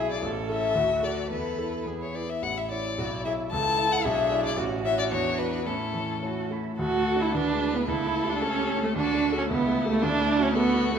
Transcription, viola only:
0.00 0.23 E4 medium
0.24 0.78 C#4 medium
0.76 1.30 F#4 medium
1.31 1.88 A4 soft
1.87 2.23 G#4 soft
2.43 2.95 E4 soft
2.99 3.51 E4 medium
3.52 4.07 E4 medium
4.05 4.57 D4 medium
4.58 5.13 C#4 medium
5.12 5.66 D4 medium
5.67 6.56 C#4 soft
6.79 7.23 F#4 medium
7.22 7.34 E4 medium
7.35 7.77 D4 medium
7.76 7.88 B3 medium
7.88 8.31 E4 medium
8.29 8.44 D4 medium
8.42 8.83 C#4 medium
8.84 8.89 A3 medium
8.96 9.36 D4 medium
9.38 9.43 C#4 medium
9.50 9.89 B3 medium
9.91 10.04 A3 medium
10.03 10.44 D4 loud
10.43 10.55 C#4 medium
10.55 10.94 B3 loud

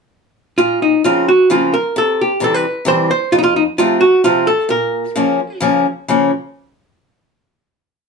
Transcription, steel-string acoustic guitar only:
0.58 0.93 A#2 medium
1.04 1.28 C#3 medium
1.04 1.28 F3 soft
1.04 1.28 A#3 soft
1.04 1.28 C4 medium
1.50 1.73 C#3 medium
1.50 1.74 F3 medium
1.50 1.74 A#3 soft
1.50 1.74 C4 soft
1.96 2.30 C3 medium
2.40 2.64 C3 medium
2.40 2.64 E3 soft
2.40 2.65 G3 soft
2.40 2.65 C4 soft
2.85 3.10 C3 medium
2.85 3.10 E3 medium
2.85 3.10 G3 medium
2.85 3.10 C4 medium
3.33 3.67 F2 medium
3.78 4.02 C3 medium
3.78 4.02 F3 soft
3.78 4.02 A3 soft
3.78 4.02 C4 medium
4.24 4.47 C3 medium
4.24 4.47 F3 soft
4.24 4.48 A3 medium
4.24 4.48 C4 medium
4.69 5.03 A#2 medium
5.16 5.39 C#3 medium
5.16 5.39 F3 soft
5.16 5.39 A#3 soft
5.16 5.40 C#4 medium
5.60 5.85 C#3 medium
5.60 5.85 F3 medium
5.60 5.85 A#3 medium
5.60 5.85 C#4 medium
6.08 6.30 C#3 medium
6.08 6.30 F3 medium
6.08 6.30 A#3 medium
6.08 6.30 C#4 medium

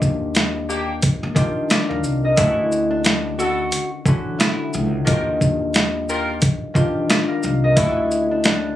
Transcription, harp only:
0.00 1.33 D#3 medium
0.00 1.35 D4 medium
0.00 1.36 F4 medium
0.00 1.37 G4 medium
1.35 2.43 D#3 loud
1.35 2.31 D4 medium
1.35 2.44 F4 medium
1.35 1.70 G4 loud
1.70 2.45 G4 medium
1.70 2.31 D5 medium
1.89 2.25 A#4 medium
1.89 2.44 F5 medium
2.25 4.37 A#4 medium
2.25 4.03 D#5 medium
2.36 4.05 D3 medium
2.36 4.06 C#4 medium
2.36 4.07 E4 medium
2.36 4.08 F#4 medium
4.06 5.12 D3 medium
4.06 5.12 C#4 medium
4.06 5.11 E4 medium
4.06 5.07 F#4 loud
5.05 6.73 D#3 medium
5.05 6.74 D4 medium
5.05 6.75 F4 medium
5.05 5.15 F#4 medium
5.14 6.76 G4 medium
6.74 7.82 D#3 medium
6.74 7.70 D4 medium
6.74 7.83 F4 medium
6.74 7.09 G4 loud
7.10 7.84 G4 medium
7.10 7.70 D5 medium
7.28 7.64 A#4 medium
7.28 7.83 F5 medium
7.64 8.76 A#4 medium
7.64 8.76 D#5 medium
7.76 8.76 D3 medium
7.76 8.76 C#4 medium
7.76 8.76 E4 medium
7.76 8.76 F#4 medium

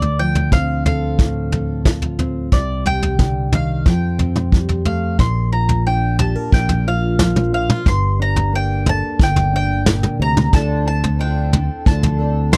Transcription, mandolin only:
0.00 0.20 D5 medium
0.19 0.52 G5 medium
0.53 0.85 F5 medium
0.86 1.82 F5 medium
2.53 2.84 D5 medium
2.87 3.54 G5 medium
3.55 3.87 F5 medium
3.88 4.83 G5 medium
4.86 5.19 F5 medium
5.20 5.52 C6 medium
5.53 5.86 A#5 medium
5.87 6.17 G5 medium
6.19 6.50 A5 medium
6.54 6.87 G5 medium
6.88 7.53 F5 medium
7.54 7.88 F5 medium
7.88 8.21 C6 medium
8.22 8.55 A#5 medium
8.55 8.88 G5 medium
8.89 9.22 A5 medium
9.23 9.55 G5 medium
9.56 10.17 G5 medium
10.22 10.54 A#5 medium
10.54 10.86 A5 medium
10.88 11.20 A5 medium
11.21 11.86 G5 medium
11.87 12.52 A5 medium
12.53 12.57 C6 medium

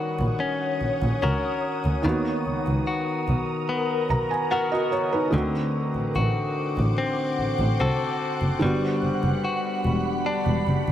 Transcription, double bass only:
0.20 0.28 A#1 medium
0.82 0.88 A#1 soft
1.02 1.10 A#1 medium
1.23 1.31 C#2 medium
1.84 1.93 D2 medium
2.05 2.13 D#2 loud
2.46 2.53 C#2 soft
2.67 2.75 C#2 medium
3.28 3.36 B1 medium
4.10 4.18 B1 medium
5.33 5.41 D2 loud
5.95 6.02 A1 soft
6.16 6.24 A1 medium
6.77 6.85 A1 loud
7.39 7.46 A1 soft
7.59 7.67 A1 medium
7.80 7.88 C2 medium
8.42 8.50 F#1 medium
8.62 8.70 G1 loud
9.03 9.10 F#1 soft
9.24 9.32 F#1 medium
9.85 9.93 E1 medium
10.47 10.55 E1 medium
10.67 10.75 F#1 medium
10.88 10.92 F#1 medium

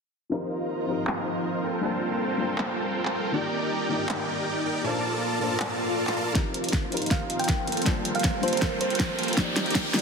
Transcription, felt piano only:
0.29 0.85 F3 medium
0.29 0.86 C4 medium
0.29 0.86 D#4 medium
0.29 0.87 G4 medium
0.34 0.87 A#4 medium
0.86 1.62 F3 medium
0.86 1.62 C4 medium
0.86 1.63 D#4 medium
0.86 1.63 G4 medium
0.86 1.64 A#4 medium
1.81 2.36 G3 medium
1.81 2.38 A#3 medium
1.81 2.37 D4 medium
1.81 2.37 F4 medium
1.81 2.37 A5 medium
1.85 2.38 C5 medium
2.38 3.30 G3 medium
2.38 3.31 A#3 medium
2.38 3.31 D4 medium
2.38 3.31 F4 medium
2.38 3.32 C5 medium
2.38 3.32 A5 medium
3.31 3.87 D#3 medium
3.31 3.87 A#3 medium
3.31 3.88 F4 medium
3.31 3.88 G4 medium
3.35 3.89 D5 medium
3.88 4.81 D#3 medium
3.88 4.82 A#3 medium
3.88 4.82 F4 medium
3.88 4.83 G4 medium
3.92 4.83 D5 medium
4.83 5.38 A#2 medium
4.83 5.38 A#3 medium
4.83 5.39 D4 medium
4.83 5.39 A5 medium
4.87 5.40 C5 medium
5.39 6.32 A#2 medium
5.39 6.33 A#3 medium
5.39 6.33 D4 medium
5.39 6.34 C5 medium
5.39 6.34 A5 medium
6.33 6.89 F3 medium
6.33 6.89 C4 medium
6.33 6.90 D#4 medium
6.33 6.90 G4 medium
6.38 6.91 A#4 medium
6.90 7.65 F3 medium
6.90 7.66 C4 medium
6.90 7.66 D#4 medium
6.90 7.67 G4 medium
6.90 7.67 A#4 medium
7.84 8.40 G3 medium
7.84 8.41 A#3 medium
7.84 8.40 D4 medium
7.84 8.41 F4 medium
7.84 8.42 C5 loud
7.84 8.41 A5 medium
8.41 9.34 G3 medium
8.41 9.35 A#3 medium
8.41 9.35 D4 medium
8.41 9.35 F4 medium
8.41 9.36 C5 medium
8.41 9.35 A5 medium
9.36 9.91 D#3 medium
9.36 9.91 A#3 medium
9.36 9.92 F4 medium
9.36 9.92 G4 medium
9.40 9.93 D5 loud
9.92 10.02 D#3 medium
9.92 10.02 A#3 medium
9.92 10.02 F4 medium
9.92 10.02 G4 medium
9.92 10.02 D5 medium

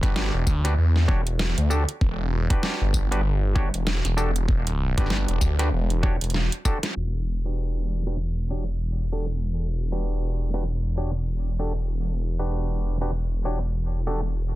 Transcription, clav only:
0.03 0.60 D4 medium
0.03 0.60 F#4 medium
0.03 0.60 G4 medium
0.03 0.60 B4 medium
0.64 0.74 D4 medium
0.64 0.74 F#4 medium
0.64 0.74 G4 medium
0.64 0.74 B4 medium
1.08 1.21 D4 medium
1.08 1.21 F#4 medium
1.08 1.21 G4 medium
1.08 1.21 C#5 loud
1.70 1.83 D4 medium
1.70 1.83 F#4 medium
1.70 1.83 G4 medium
1.70 1.83 A4 medium
2.50 3.08 D4 medium
2.50 3.08 F#4 medium
2.50 3.08 G4 medium
2.50 3.08 B4 medium
3.11 3.21 D4 medium
3.11 3.21 F#4 medium
3.11 3.21 G4 medium
3.11 3.21 B4 loud
3.55 3.69 D4 medium
3.55 3.69 F#4 medium
3.55 3.69 G4 medium
3.55 3.69 C#5 loud
4.17 4.30 D4 medium
4.17 4.30 F#4 medium
4.17 4.30 G4 medium
4.17 4.31 A4 medium
4.97 5.55 D4 medium
4.97 5.55 F#4 medium
4.97 5.55 G4 medium
4.97 5.55 B4 medium
5.59 5.69 D4 medium
5.59 5.69 F#4 medium
5.59 5.69 G4 medium
5.59 5.68 B4 loud
6.03 6.16 D4 medium
6.03 6.16 F#4 medium
6.03 6.16 G4 medium
6.03 6.16 C#5 loud
6.65 6.78 D4 medium
6.65 6.78 F#4 medium
6.65 6.78 G4 medium
6.65 6.78 A4 medium
7.45 8.03 D4 medium
7.45 8.03 F#4 medium
7.45 8.03 G4 medium
7.45 8.03 B4 medium
8.07 8.16 D4 medium
8.07 8.16 F#4 medium
8.07 8.16 G4 medium
8.07 8.16 B4 medium
8.50 8.64 D4 medium
8.50 8.64 F#4 medium
8.50 8.64 G4 medium
8.50 8.64 C#5 medium
9.12 9.26 D4 medium
9.12 9.26 F#4 medium
9.12 9.26 G4 medium
9.12 9.26 A4 medium
9.92 10.50 D4 medium
9.92 10.50 F#4 medium
9.92 10.50 G4 medium
9.92 10.50 B4 medium
10.54 10.63 D4 medium
10.54 10.63 F#4 medium
10.54 10.63 G4 medium
10.54 10.63 B4 medium
10.97 11.11 D4 medium
10.97 11.11 F#4 medium
10.97 11.11 G4 medium
10.97 11.11 C#5 medium
11.59 11.73 D4 medium
11.59 11.73 F#4 medium
11.59 11.73 G4 medium
11.59 11.73 A4 medium
12.39 12.97 D4 medium
12.39 12.97 F#4 medium
12.39 12.97 G4 medium
12.39 12.97 B4 medium
13.01 13.11 D4 medium
13.01 13.11 F#4 medium
13.01 13.11 G4 medium
13.01 13.11 B4 medium
13.45 13.58 D4 medium
13.45 13.58 F#4 medium
13.45 13.58 G4 medium
13.45 13.58 C#5 medium
14.07 14.20 D4 medium
14.07 14.20 F#4 medium
14.07 14.20 G4 medium
14.07 14.20 A4 medium

